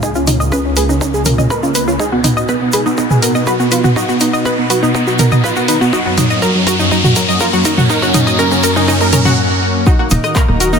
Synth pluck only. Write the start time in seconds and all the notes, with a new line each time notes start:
0.03 D#4
0.15 F4
0.27 D#4
0.40 D#5
0.52 B4
0.77 B4
0.89 D#4
1.01 D#4
1.26 A#4
1.38 D#5
1.50 B4
1.63 F4
1.75 B4
1.88 F4
2.00 D#4
2.12 F#4
2.24 D#4
2.37 D#5
2.49 B4
2.73 B4
2.86 D#4
2.98 D#4
3.22 A#4
3.35 D#5
3.47 B4
3.60 F#4
3.72 B4
3.84 F#4
3.96 D#4
4.09 F#4
4.21 D#4
4.33 D#5
4.45 B4
4.70 B4
4.83 D#4
4.95 D#4
5.19 A#4
5.32 D#5
5.44 B4
5.57 F#4
5.68 B4
5.81 F#4
5.93 D#4
6.06 F#4
6.18 D#4
6.30 D#5
6.42 A#4
6.67 A#4
6.79 D#4
6.91 D#4
7.16 A#4
7.29 D#5
7.41 A#4
7.53 F#4
7.65 A#4
7.78 F#4
7.90 D#4
8.02 F#4
8.14 D#4
8.27 D#5
8.39 A#4
8.63 A#4
8.76 D#4
8.88 D#4
9.13 A#4
9.25 F#4
9.87 D#4
9.99 F#4
10.11 D#4
10.24 D#5
10.36 A#4
10.60 A#4
10.73 D#4